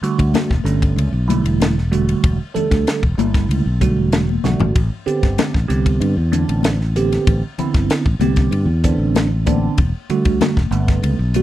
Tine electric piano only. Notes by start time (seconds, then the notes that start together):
0.02 D3 G3 A3 F#4
0.64 D3 G3 A3 C#4
1.28 D3 G3 A3 E4
1.92 D3 G3 A3 F#4
2.54 D3 G3 A3 A4
3.18 D3 G3 A3 E4
3.81 D3 G3 A3 F#4
4.44 D3 G3 A3 F#4
5.06 D3 B3 C4 G4
5.68 D3 B3 C4 G4
6.32 D3 B3 C4 D4
6.96 D3 B3 C4 G4
7.59 D3 B3 C4 E4
8.22 D3 B3 C4 G4
8.84 D3 B3 C4 D4
9.46 D3 B3 C4 D4
10.10 D3 G3 A3 F#4
10.71 D3 G3 A3 B3
11.36 D3 G3 A3 F#4